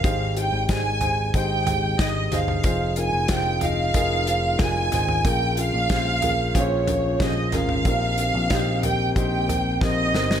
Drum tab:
HH |x-x-x-x-x-x-x-x-|x-x-x-x-x-x-x-x-|x-x-x-x-x-x-x-x-|x-x-x-x-x-x-----|
SD |----o-------o-o-|----o-------o-o-|----o-------o-o-|----o-------o-oo|
FT |------o---o---oo|------o-------oo|------o---o---oo|------o---o-----|
BD |o---o---o---o---|o---o---o---o---|o---o---o---o---|o---o---o---o---|